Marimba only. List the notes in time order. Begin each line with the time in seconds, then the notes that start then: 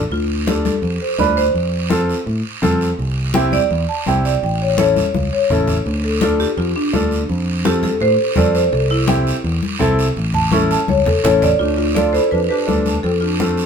0.12 F4
0.47 G4
0.66 A4
1.02 C5
1.19 D5
1.37 C5
3.53 D5
3.89 A5
4.08 G5
4.25 D5
4.44 G5
4.62 C#5
4.80 C#5
5.33 C#5
6.04 A4
6.22 F4
6.40 G4
6.58 F4
6.76 D4
7.65 G4
7.84 A4
8.02 C5
8.37 D5
8.55 C5
8.73 A4
8.91 E4
10.34 A5
10.52 C#6
10.71 A5
10.89 C#5
11.06 A4
11.24 C#5
11.42 D5
11.59 D4 F4
11.77 D4 F4
11.95 A4 D5
12.13 A4 C5
12.31 F4 B4
12.49 G4 B4
13.03 F4 A4
13.21 D4 F4